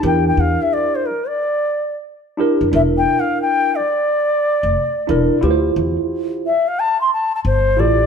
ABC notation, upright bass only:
X:1
M:4/4
L:1/16
Q:"Swing 16ths" 1/4=89
K:Dm
V:1 name="Upright bass" clef=bass
E,,2 E,, z12 F,, | E,,,2 z8 z F,,, z2 E,,, z | D,,2 E,, z8 z G,,,2 A,,,2 |]